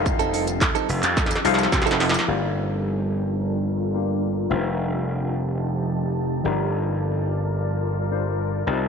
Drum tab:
HH |---x--o--x-----x--o--x-----x--o--x-----x--o--x--|------------------------------------------------|------------------------------------------------|------------------------------------------------|
SH |x--x--x--x--x--x--x--x--x--x--x--x--x--x--x--x--|------------------------------------------------|------------------------------------------------|------------------------------------------------|
CP |------------x--------x--------------------------|------------------------------------------------|------------------------------------------------|------------------------------------------------|
SD |------------o-----------o-o-o-o-o-o-o-o-o-o-o-o-|------------------------------------------------|------------------------------------------------|------------------------------------------------|
BD |o-----------o-----------o-----------o-----------|------------------------------------------------|------------------------------------------------|------------------------------------------------|